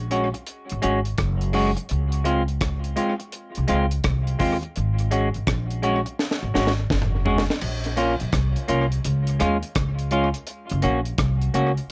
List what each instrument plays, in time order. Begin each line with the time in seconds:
Already playing: upright bass A#1
0.11 clean electric guitar G#3 C#4 F#4, closed hi-hat
0.34 muted clean electric guitar stroke, closed hi-hat
0.47 closed hi-hat
0.69 upright bass G#1, closed hi-hat
0.82 upright bass G#1, clean electric guitar G#3 C#4 F#4, closed hi-hat
1.05 closed hi-hat
1.18 upright bass F#1, kick, cross-stick, closed hi-hat
1.41 closed hi-hat
1.53 clean electric guitar G#3 C#4 F#4, open hi-hat
1.77 muted clean electric guitar stroke, closed hi-hat
1.89 upright bass C#2, closed hi-hat
2.12 closed hi-hat
2.24 clean electric guitar G#3 C4 F4, closed hi-hat
2.48 closed hi-hat
2.61 kick, cross-stick, closed hi-hat
2.84 closed hi-hat
2.96 clean electric guitar G#3 C4 F4, closed hi-hat
3.20 muted clean electric guitar stroke, closed hi-hat
3.32 closed hi-hat
3.55 upright bass C2, closed hi-hat
3.68 upright bass C#2, clean electric guitar G#3 C4 F4, closed hi-hat
3.91 closed hi-hat
4.04 upright bass C2, kick, cross-stick, closed hi-hat
4.27 closed hi-hat
4.39 upright bass D#2, clean electric guitar G#3 C4 F4, kick, open hi-hat
4.63 muted clean electric guitar stroke, closed hi-hat
4.76 upright bass G#1, closed hi-hat
4.99 closed hi-hat
5.11 clean electric guitar G#3 C#4 F#4, closed hi-hat
5.34 upright bass G#1, closed hi-hat
5.47 upright bass A#1, kick, cross-stick, closed hi-hat
5.70 closed hi-hat
5.82 clean electric guitar G#3 C#4 F#4, closed hi-hat
6.06 muted clean electric guitar stroke, closed hi-hat
6.19 snare
6.31 snare
6.43 upright bass G#1
6.54 upright bass G#1, clean electric guitar G#3 C#4 F#4, snare
6.67 snare
6.90 upright bass F#1, kick, snare
7.02 mid tom
7.25 clean electric guitar G#3 C#4 F#4, floor tom
7.38 snare
7.50 snare
7.61 upright bass A#1, crash
7.84 closed hi-hat
7.97 clean electric guitar A#3 C#4 F4, closed hi-hat
8.20 upright bass A#1, closed hi-hat
8.32 upright bass C2, kick, cross-stick, closed hi-hat
8.56 closed hi-hat
8.68 upright bass C2, clean electric guitar A#3 C#4 F4, closed hi-hat
8.92 closed hi-hat
9.04 upright bass C#2, closed hi-hat
9.27 closed hi-hat
9.40 upright bass D#2, clean electric guitar G#3 C#4 F4, cross-stick, closed hi-hat
9.63 closed hi-hat
9.75 upright bass C#2, kick, cross-stick, closed hi-hat
9.99 closed hi-hat
10.11 clean electric guitar G#3 C#4 F4, closed hi-hat
10.34 closed hi-hat
10.47 closed hi-hat
10.70 upright bass F#1, closed hi-hat
10.82 upright bass A#1, clean electric guitar A#3 C#4 F#4, closed hi-hat
11.05 closed hi-hat
11.18 upright bass C2, kick, cross-stick, closed hi-hat
11.42 closed hi-hat
11.54 upright bass C#2, clean electric guitar A#3 C#4 F#4, closed hi-hat
11.77 closed hi-hat